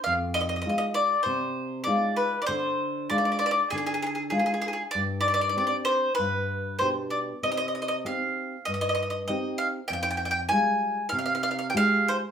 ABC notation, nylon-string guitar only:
X:1
M:4/4
L:1/8
Q:1/4=98
K:Fdor
V:1 name="Nylon-string guitar"
F,,2 [A,EF]2 C,2 [A,EF]2 | D,2 [A,DF]2 D,2 [A,DF]2 | G,,2 [CDG]2 G,,2 [=B,,DG]2 | C,2 [CEG]2 G,,2 [CEG]2 |
F,,2 [G,A,F]2 C,2 [A,FG]2 |]